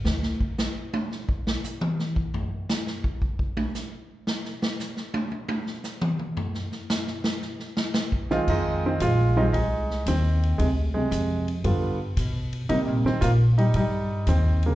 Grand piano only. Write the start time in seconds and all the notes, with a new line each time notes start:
8.31 D#3 G#3 C4 F4
8.49 G#3 D#4
8.86 D#3 C4
9.02 G#3 F4
9.37 D#3 G3 G#3 C4 D#4 F4
9.53 G#3 D#4
10.08 D#3 C4
10.58 C3 G#3
10.94 C3 G#3
11.64 D3 G3 B3 F4
12.69 C3 G3 A#3 D#4
13.06 D#3 C4
13.21 A#3 F4
13.58 G3 D#4
13.76 G3 D#4
14.29 D#3 C4
14.66 C#3 A#3